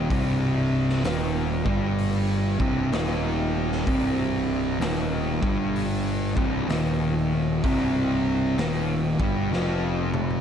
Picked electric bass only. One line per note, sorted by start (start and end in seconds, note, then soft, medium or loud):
0.10 1.00 C1 loud
1.04 1.61 D#1 loud
1.65 2.56 G1 medium
2.60 2.90 C1 medium
2.92 3.83 D#1 loud
3.87 4.77 C1 medium
4.80 5.38 D#1 loud
5.42 6.32 G1 medium
6.37 6.67 C1 medium
6.69 7.59 D#1 loud
7.64 8.54 C1 medium
8.57 9.15 D#1 loud
9.19 9.50 G1 loud
9.51 10.41 F1 medium